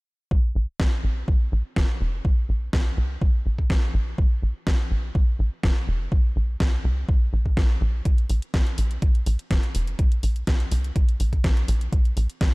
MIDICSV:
0, 0, Header, 1, 3, 480
1, 0, Start_track
1, 0, Tempo, 483871
1, 310, Time_signature, 4, 2, 24, 8
1, 12441, End_track
2, 0, Start_track
2, 0, Title_t, "Analog synth bass"
2, 0, Program_c, 0, 38
2, 310, Note_on_c, 0, 34, 94
2, 509, Note_off_c, 0, 34, 0
2, 550, Note_on_c, 0, 34, 86
2, 654, Note_off_c, 0, 34, 0
2, 790, Note_on_c, 0, 34, 76
2, 894, Note_off_c, 0, 34, 0
2, 1029, Note_on_c, 0, 34, 81
2, 1229, Note_off_c, 0, 34, 0
2, 1269, Note_on_c, 0, 34, 94
2, 1469, Note_off_c, 0, 34, 0
2, 1510, Note_on_c, 0, 34, 98
2, 1614, Note_off_c, 0, 34, 0
2, 1749, Note_on_c, 0, 29, 76
2, 1854, Note_off_c, 0, 29, 0
2, 1990, Note_on_c, 0, 29, 91
2, 2189, Note_off_c, 0, 29, 0
2, 2229, Note_on_c, 0, 34, 90
2, 2429, Note_off_c, 0, 34, 0
2, 2470, Note_on_c, 0, 34, 75
2, 2669, Note_off_c, 0, 34, 0
2, 2709, Note_on_c, 0, 36, 92
2, 2909, Note_off_c, 0, 36, 0
2, 2950, Note_on_c, 0, 36, 96
2, 3149, Note_off_c, 0, 36, 0
2, 3189, Note_on_c, 0, 34, 96
2, 3389, Note_off_c, 0, 34, 0
2, 3430, Note_on_c, 0, 34, 81
2, 3629, Note_off_c, 0, 34, 0
2, 3669, Note_on_c, 0, 34, 84
2, 3869, Note_off_c, 0, 34, 0
2, 3909, Note_on_c, 0, 34, 94
2, 4109, Note_off_c, 0, 34, 0
2, 4150, Note_on_c, 0, 34, 96
2, 4349, Note_off_c, 0, 34, 0
2, 4389, Note_on_c, 0, 34, 86
2, 4493, Note_off_c, 0, 34, 0
2, 4629, Note_on_c, 0, 34, 77
2, 4734, Note_off_c, 0, 34, 0
2, 4869, Note_on_c, 0, 34, 79
2, 5069, Note_off_c, 0, 34, 0
2, 5109, Note_on_c, 0, 34, 99
2, 5309, Note_off_c, 0, 34, 0
2, 5349, Note_on_c, 0, 34, 96
2, 5453, Note_off_c, 0, 34, 0
2, 5589, Note_on_c, 0, 29, 79
2, 5693, Note_off_c, 0, 29, 0
2, 5829, Note_on_c, 0, 29, 93
2, 6029, Note_off_c, 0, 29, 0
2, 6069, Note_on_c, 0, 34, 89
2, 6269, Note_off_c, 0, 34, 0
2, 6310, Note_on_c, 0, 34, 80
2, 6509, Note_off_c, 0, 34, 0
2, 6549, Note_on_c, 0, 36, 90
2, 6749, Note_off_c, 0, 36, 0
2, 6790, Note_on_c, 0, 36, 97
2, 6989, Note_off_c, 0, 36, 0
2, 7029, Note_on_c, 0, 34, 95
2, 7229, Note_off_c, 0, 34, 0
2, 7269, Note_on_c, 0, 34, 82
2, 7469, Note_off_c, 0, 34, 0
2, 7509, Note_on_c, 0, 34, 82
2, 7709, Note_off_c, 0, 34, 0
2, 7749, Note_on_c, 0, 34, 89
2, 7949, Note_off_c, 0, 34, 0
2, 7989, Note_on_c, 0, 34, 95
2, 8189, Note_off_c, 0, 34, 0
2, 8229, Note_on_c, 0, 34, 88
2, 8333, Note_off_c, 0, 34, 0
2, 8469, Note_on_c, 0, 34, 75
2, 8573, Note_off_c, 0, 34, 0
2, 8710, Note_on_c, 0, 34, 79
2, 8909, Note_off_c, 0, 34, 0
2, 8949, Note_on_c, 0, 34, 97
2, 9149, Note_off_c, 0, 34, 0
2, 9190, Note_on_c, 0, 34, 104
2, 9294, Note_off_c, 0, 34, 0
2, 9429, Note_on_c, 0, 29, 77
2, 9534, Note_off_c, 0, 29, 0
2, 9669, Note_on_c, 0, 29, 90
2, 9869, Note_off_c, 0, 29, 0
2, 9910, Note_on_c, 0, 34, 91
2, 10109, Note_off_c, 0, 34, 0
2, 10149, Note_on_c, 0, 34, 80
2, 10349, Note_off_c, 0, 34, 0
2, 10389, Note_on_c, 0, 36, 93
2, 10589, Note_off_c, 0, 36, 0
2, 10629, Note_on_c, 0, 36, 97
2, 10829, Note_off_c, 0, 36, 0
2, 10870, Note_on_c, 0, 34, 97
2, 11069, Note_off_c, 0, 34, 0
2, 11109, Note_on_c, 0, 34, 82
2, 11309, Note_off_c, 0, 34, 0
2, 11350, Note_on_c, 0, 34, 85
2, 11549, Note_off_c, 0, 34, 0
2, 11590, Note_on_c, 0, 34, 94
2, 11789, Note_off_c, 0, 34, 0
2, 11829, Note_on_c, 0, 34, 94
2, 12029, Note_off_c, 0, 34, 0
2, 12069, Note_on_c, 0, 34, 88
2, 12174, Note_off_c, 0, 34, 0
2, 12310, Note_on_c, 0, 34, 78
2, 12414, Note_off_c, 0, 34, 0
2, 12441, End_track
3, 0, Start_track
3, 0, Title_t, "Drums"
3, 309, Note_on_c, 9, 36, 106
3, 409, Note_off_c, 9, 36, 0
3, 789, Note_on_c, 9, 36, 109
3, 790, Note_on_c, 9, 38, 116
3, 889, Note_off_c, 9, 36, 0
3, 890, Note_off_c, 9, 38, 0
3, 1269, Note_on_c, 9, 36, 109
3, 1368, Note_off_c, 9, 36, 0
3, 1749, Note_on_c, 9, 36, 108
3, 1750, Note_on_c, 9, 38, 108
3, 1848, Note_off_c, 9, 36, 0
3, 1849, Note_off_c, 9, 38, 0
3, 2229, Note_on_c, 9, 36, 110
3, 2328, Note_off_c, 9, 36, 0
3, 2709, Note_on_c, 9, 36, 110
3, 2710, Note_on_c, 9, 38, 118
3, 2808, Note_off_c, 9, 36, 0
3, 2809, Note_off_c, 9, 38, 0
3, 3189, Note_on_c, 9, 36, 117
3, 3288, Note_off_c, 9, 36, 0
3, 3556, Note_on_c, 9, 36, 55
3, 3655, Note_off_c, 9, 36, 0
3, 3669, Note_on_c, 9, 36, 112
3, 3671, Note_on_c, 9, 38, 111
3, 3769, Note_off_c, 9, 36, 0
3, 3770, Note_off_c, 9, 38, 0
3, 4149, Note_on_c, 9, 36, 113
3, 4249, Note_off_c, 9, 36, 0
3, 4629, Note_on_c, 9, 36, 116
3, 4630, Note_on_c, 9, 38, 113
3, 4729, Note_off_c, 9, 36, 0
3, 4729, Note_off_c, 9, 38, 0
3, 5109, Note_on_c, 9, 36, 120
3, 5208, Note_off_c, 9, 36, 0
3, 5589, Note_on_c, 9, 36, 115
3, 5590, Note_on_c, 9, 38, 111
3, 5688, Note_off_c, 9, 36, 0
3, 5689, Note_off_c, 9, 38, 0
3, 6069, Note_on_c, 9, 36, 116
3, 6168, Note_off_c, 9, 36, 0
3, 6549, Note_on_c, 9, 36, 114
3, 6550, Note_on_c, 9, 38, 113
3, 6648, Note_off_c, 9, 36, 0
3, 6649, Note_off_c, 9, 38, 0
3, 7029, Note_on_c, 9, 36, 120
3, 7128, Note_off_c, 9, 36, 0
3, 7396, Note_on_c, 9, 36, 56
3, 7495, Note_off_c, 9, 36, 0
3, 7509, Note_on_c, 9, 36, 115
3, 7510, Note_on_c, 9, 38, 102
3, 7609, Note_off_c, 9, 36, 0
3, 7609, Note_off_c, 9, 38, 0
3, 7989, Note_on_c, 9, 36, 112
3, 7989, Note_on_c, 9, 42, 62
3, 8088, Note_off_c, 9, 36, 0
3, 8088, Note_off_c, 9, 42, 0
3, 8116, Note_on_c, 9, 42, 34
3, 8216, Note_off_c, 9, 42, 0
3, 8229, Note_on_c, 9, 46, 99
3, 8328, Note_off_c, 9, 46, 0
3, 8356, Note_on_c, 9, 42, 37
3, 8455, Note_off_c, 9, 42, 0
3, 8469, Note_on_c, 9, 36, 113
3, 8469, Note_on_c, 9, 42, 61
3, 8470, Note_on_c, 9, 38, 107
3, 8568, Note_off_c, 9, 36, 0
3, 8568, Note_off_c, 9, 42, 0
3, 8569, Note_off_c, 9, 38, 0
3, 8596, Note_on_c, 9, 42, 37
3, 8696, Note_off_c, 9, 42, 0
3, 8709, Note_on_c, 9, 46, 100
3, 8808, Note_off_c, 9, 46, 0
3, 8836, Note_on_c, 9, 42, 36
3, 8935, Note_off_c, 9, 42, 0
3, 8949, Note_on_c, 9, 36, 115
3, 8949, Note_on_c, 9, 42, 56
3, 9048, Note_off_c, 9, 36, 0
3, 9048, Note_off_c, 9, 42, 0
3, 9076, Note_on_c, 9, 42, 35
3, 9175, Note_off_c, 9, 42, 0
3, 9189, Note_on_c, 9, 46, 99
3, 9288, Note_off_c, 9, 46, 0
3, 9317, Note_on_c, 9, 42, 35
3, 9416, Note_off_c, 9, 42, 0
3, 9429, Note_on_c, 9, 36, 106
3, 9430, Note_on_c, 9, 42, 59
3, 9431, Note_on_c, 9, 38, 104
3, 9528, Note_off_c, 9, 36, 0
3, 9529, Note_off_c, 9, 42, 0
3, 9530, Note_off_c, 9, 38, 0
3, 9556, Note_on_c, 9, 42, 36
3, 9655, Note_off_c, 9, 42, 0
3, 9669, Note_on_c, 9, 46, 106
3, 9768, Note_off_c, 9, 46, 0
3, 9796, Note_on_c, 9, 42, 36
3, 9895, Note_off_c, 9, 42, 0
3, 9909, Note_on_c, 9, 36, 106
3, 9909, Note_on_c, 9, 42, 64
3, 10008, Note_off_c, 9, 36, 0
3, 10008, Note_off_c, 9, 42, 0
3, 10036, Note_on_c, 9, 42, 38
3, 10135, Note_off_c, 9, 42, 0
3, 10149, Note_on_c, 9, 46, 95
3, 10248, Note_off_c, 9, 46, 0
3, 10276, Note_on_c, 9, 42, 35
3, 10375, Note_off_c, 9, 42, 0
3, 10389, Note_on_c, 9, 36, 107
3, 10389, Note_on_c, 9, 42, 65
3, 10390, Note_on_c, 9, 38, 109
3, 10488, Note_off_c, 9, 42, 0
3, 10489, Note_off_c, 9, 36, 0
3, 10489, Note_off_c, 9, 38, 0
3, 10516, Note_on_c, 9, 42, 38
3, 10616, Note_off_c, 9, 42, 0
3, 10630, Note_on_c, 9, 46, 96
3, 10729, Note_off_c, 9, 46, 0
3, 10758, Note_on_c, 9, 42, 39
3, 10857, Note_off_c, 9, 42, 0
3, 10870, Note_on_c, 9, 36, 112
3, 10870, Note_on_c, 9, 42, 59
3, 10969, Note_off_c, 9, 36, 0
3, 10969, Note_off_c, 9, 42, 0
3, 10997, Note_on_c, 9, 42, 37
3, 11096, Note_off_c, 9, 42, 0
3, 11110, Note_on_c, 9, 46, 101
3, 11209, Note_off_c, 9, 46, 0
3, 11236, Note_on_c, 9, 36, 54
3, 11237, Note_on_c, 9, 42, 39
3, 11336, Note_off_c, 9, 36, 0
3, 11337, Note_off_c, 9, 42, 0
3, 11350, Note_on_c, 9, 36, 103
3, 11351, Note_on_c, 9, 42, 60
3, 11352, Note_on_c, 9, 38, 105
3, 11449, Note_off_c, 9, 36, 0
3, 11450, Note_off_c, 9, 42, 0
3, 11451, Note_off_c, 9, 38, 0
3, 11478, Note_on_c, 9, 42, 36
3, 11577, Note_off_c, 9, 42, 0
3, 11590, Note_on_c, 9, 46, 95
3, 11690, Note_off_c, 9, 46, 0
3, 11718, Note_on_c, 9, 42, 38
3, 11817, Note_off_c, 9, 42, 0
3, 11829, Note_on_c, 9, 36, 111
3, 11830, Note_on_c, 9, 42, 67
3, 11929, Note_off_c, 9, 36, 0
3, 11929, Note_off_c, 9, 42, 0
3, 11957, Note_on_c, 9, 42, 38
3, 12056, Note_off_c, 9, 42, 0
3, 12070, Note_on_c, 9, 46, 94
3, 12169, Note_off_c, 9, 46, 0
3, 12197, Note_on_c, 9, 42, 38
3, 12296, Note_off_c, 9, 42, 0
3, 12310, Note_on_c, 9, 36, 113
3, 12310, Note_on_c, 9, 42, 64
3, 12311, Note_on_c, 9, 38, 113
3, 12409, Note_off_c, 9, 36, 0
3, 12409, Note_off_c, 9, 42, 0
3, 12410, Note_off_c, 9, 38, 0
3, 12441, End_track
0, 0, End_of_file